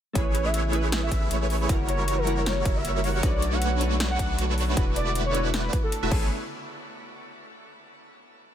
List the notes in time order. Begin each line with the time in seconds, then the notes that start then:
0.13 A1 C#3 A3 B3 C#4 E4 G#4 B4 C#5, kick, closed hi-hat
0.35 closed hi-hat
0.45 E5
0.54 closed hi-hat
0.71 A3 C#4 E4 G#4, closed hi-hat
0.75 B4
0.92 snare, closed hi-hat
1.03 E5
1.12 A1 A3 E4 G#4 B4 E5, kick, closed hi-hat
1.31 A1 A3 E4 G#4 B4 C#5, closed hi-hat
1.50 open hi-hat
1.67 F#1 E3 G3 A#3 C#4 E4 F#4 C#5, kick, closed hi-hat
1.71 A#4
1.89 C#5, closed hi-hat
2.08 closed hi-hat
2.18 A#4
2.25 G3 C#4 E4 F#4, closed hi-hat
2.29 A#4
2.46 C#5, snare, closed hi-hat
2.65 F#1 G3 E4 F#4 A#4 E5, kick, closed hi-hat
2.76 E5
2.85 F#1 G3 E4 F#4 A#4 C#5, closed hi-hat
3.04 F#5, open hi-hat
3.21 B1 D3 A3 B3 D4 F#4 B4 C#5 D5, kick, closed hi-hat
3.25 B4
3.42 closed hi-hat
3.53 F#5
3.62 closed hi-hat
3.79 A3 D4 F#4 B4 C#5, closed hi-hat
4.00 snare, closed hi-hat
4.10 F#5
4.19 B1 A3 D4 F#4 B4 D5, kick, closed hi-hat
4.38 B1 A3 D4 F#4 B4 C#5, closed hi-hat
4.58 open hi-hat
4.75 E1 A3 D4 E4 F#4 B4, kick, closed hi-hat
4.79 B4
4.96 D5, closed hi-hat
5.15 closed hi-hat
5.26 C#5
5.33 A3 D4 E4 F#4 B4, closed hi-hat
5.54 B4, snare, closed hi-hat
5.73 kick, closed hi-hat
5.83 A4
5.92 closed hi-hat
6.03 E1 A3 E4 F#4 B4 E5
6.09 A1 C#3 A3 B3 C#4 E4 G#4 A4 B4 C#5, kick, crash
6.13 G#4 B4